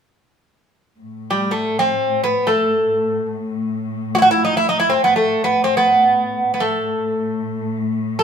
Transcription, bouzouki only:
1.30 1.51 G3 medium
1.51 1.79 A3 medium
1.79 2.23 C4 medium
2.24 2.47 B3 medium
2.47 3.26 A3 medium
4.15 4.22 E4 medium
4.15 4.18 F#4 medium
4.22 4.30 F#4 medium
4.31 4.44 E4 medium
4.45 4.57 D#4 medium
4.57 4.68 E4 medium
4.69 4.79 D#4 medium
4.80 4.91 E4 medium
4.90 5.03 C4 medium
5.04 5.16 B3 medium
5.16 5.44 A3 medium
5.44 5.64 B3 medium
5.64 5.77 C4 medium
5.77 6.53 B3 medium
6.54 6.61 B3 soft
6.60 7.76 A3 medium
8.19 8.23 A4 medium

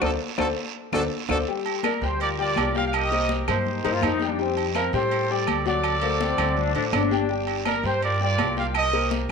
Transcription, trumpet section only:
1.85 2.02 A#4 medium
2.05 2.22 C5 medium
2.22 2.40 F4 medium
2.22 2.39 A#4 medium
2.22 2.30 D5 loud
2.41 2.91 F4 medium
2.41 2.90 A#4 medium
2.41 2.74 D5 loud
2.77 2.82 F5 medium
2.87 2.94 F5 medium
2.95 3.49 G4 medium
2.95 3.63 A#4 medium
2.95 3.31 D#5 loud
3.50 4.18 D#4 medium
3.50 4.18 G4 medium
3.50 4.18 C5 medium
4.76 4.92 A#4 medium
4.95 5.63 G4 medium
4.95 5.63 A4 medium
4.95 5.30 C5 loud
5.31 5.48 D5 loud
5.50 5.66 D5 loud
5.68 7.08 F#4 medium
5.68 7.08 A4 medium
5.68 7.08 D5 loud
7.67 7.83 A#4 medium
7.86 8.03 C5 medium
8.04 8.22 F4 medium
8.04 8.22 A#4 medium
8.04 8.20 D5 loud
8.23 8.73 F4 medium
8.23 8.73 A#4 medium
8.23 8.56 D5 loud
8.60 8.67 F5 medium
8.77 9.30 G4 medium
8.77 9.31 A#4 medium
8.77 9.10 D#5 loud

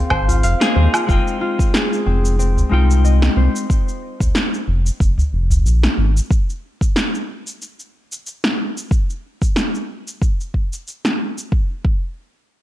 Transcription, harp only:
0.00 2.06 C4 medium
0.00 0.28 F4 medium
0.00 1.40 G#4 medium
0.10 0.75 C5 loud
0.28 0.93 F4 medium
0.43 2.10 F5 medium
0.75 2.73 C5 medium
0.94 1.08 F4 medium
1.08 1.40 F4 medium
1.41 2.71 F4 medium
1.74 4.01 G#4 medium
2.06 2.38 C4 medium
2.39 5.39 C4 medium
2.71 5.24 F4 medium
3.04 4.83 D#5 medium
3.37 5.35 C5 medium

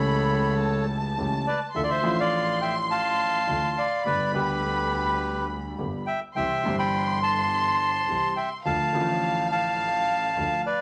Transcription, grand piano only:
0.00 1.11 C#2 medium
0.00 1.10 C#3 medium
0.00 1.09 E3 medium
0.00 1.10 A3 medium
0.00 1.11 C#4 medium
0.00 1.12 G4 medium
1.17 1.42 C#2 soft
1.17 1.42 C#3 medium
1.17 1.42 E3 soft
1.17 1.42 A3 soft
1.17 1.42 C#4 soft
1.17 1.42 G4 soft
1.75 1.99 D2 soft
1.75 1.99 D3 soft
1.75 1.99 E3 soft
1.75 1.99 A3 soft
1.75 1.99 D4 soft
1.75 1.99 F4 soft
2.02 3.40 A1 medium
2.02 3.40 A2 medium
2.02 3.39 F3 medium
2.02 3.40 A3 medium
2.02 3.40 D4 medium
2.02 3.41 F4 medium
3.47 3.71 D2 soft
3.47 3.72 D3 soft
3.47 3.71 E3 soft
3.47 3.72 A3 soft
3.47 3.72 D4 soft
3.47 3.72 F4 soft
4.05 4.30 G1 soft
4.05 4.29 G2 medium
4.05 4.29 D3 soft
4.05 4.30 G3 soft
4.05 4.29 B3 soft
4.05 4.30 G4 soft
4.33 5.71 D2 medium
4.33 5.71 D3 medium
4.33 5.70 G3 medium
4.33 5.71 B3 medium
4.33 5.72 G4 medium
5.78 6.03 G1 soft
5.78 6.02 G2 soft
5.78 6.02 D3 soft
5.78 6.02 G3 soft
5.78 6.03 B3 soft
5.78 6.03 G4 soft
6.36 6.60 C2 soft
6.36 6.60 C3 soft
6.36 6.60 E3 soft
6.36 6.60 G3 soft
6.36 6.60 C4 soft
6.36 6.60 G4 soft
6.63 8.01 G1 medium
6.63 8.01 G2 medium
6.63 8.00 E3 medium
6.63 8.01 G3 medium
6.63 8.02 C4 medium
6.63 8.02 G4 medium
8.08 8.32 C2 soft
8.08 8.32 C3 soft
8.08 8.32 E3 soft
8.08 8.32 G3 soft
8.08 8.32 C4 soft
8.08 8.33 G4 soft
8.65 8.89 D2 medium
8.65 8.89 D3 soft
8.65 8.89 F3 soft
8.65 8.90 A3 soft
8.65 8.90 F4 soft
8.93 10.30 A1 medium
8.93 10.30 A2 medium
8.93 10.29 D3 medium
8.93 10.30 F3 medium
8.93 10.30 A3 medium
8.93 10.31 F4 medium
10.38 10.61 D2 soft
10.38 10.61 D3 soft
10.38 10.61 F3 soft
10.38 10.61 A3 soft
10.38 10.61 F4 soft

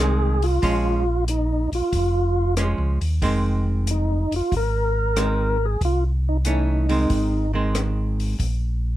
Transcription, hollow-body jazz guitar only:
0.00 0.38 D#3 soft
0.00 0.39 G#3 soft
0.00 0.39 C4 medium
0.62 1.03 F3 medium
0.62 1.03 G#3 medium
0.62 1.04 C#4 medium
2.58 2.97 F3 soft
2.58 2.98 G#3 soft
2.58 2.98 C#4 soft
3.22 4.22 D#3 medium
3.22 4.23 G#3 medium
3.22 4.23 C4 medium
5.16 5.56 D#3 soft
5.16 5.56 G#3 soft
5.16 5.57 C4 medium
6.45 6.85 E3 soft
6.45 6.86 A3 medium
6.45 6.86 C#4 medium
6.89 7.45 D#3 soft
6.89 7.46 G#3 medium
6.89 7.46 C4 medium
7.54 8.35 D#3 soft
7.54 8.36 G#3 medium
7.54 8.36 C4 medium

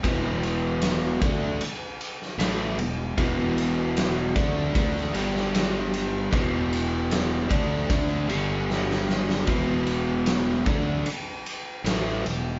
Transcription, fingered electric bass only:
0.04 1.18 E1 loud
1.22 1.58 D2 medium
1.61 muted fingered electric bass stroke soft
2.38 2.75 A1 medium
2.78 3.15 E1 medium
3.17 4.32 E1 loud
4.36 4.72 D2 medium
4.75 5.12 D2 medium
5.15 6.29 G1 loud
6.32 7.47 E1 loud
7.51 7.87 D2 medium
7.89 8.26 D2 medium
8.29 9.44 G1 medium
9.48 10.63 E1 medium
10.66 11.03 D2 medium
11.05 muted fingered electric bass stroke soft
11.84 12.22 A1 medium
12.25 12.59 E1 medium

